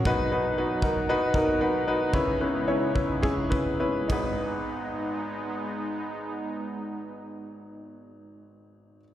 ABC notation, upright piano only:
X:1
M:4/4
L:1/8
Q:1/4=100
K:G#m
V:1 name="Upright piano"
[DFB] [DFB] [DFB] [DFA] [DFB] [DFA] [DFB] [DFB] | [CEB] [CEB] [CEc] [CEB] [CEG] [CEB] [CEB] [DGB]- | [DGB]8- | [DGB]8 |]
V:2 name="Upright piano" clef=bass
B,,3 z4 z | C,3 z4 G,,,- | G,,,8- | G,,,8 |]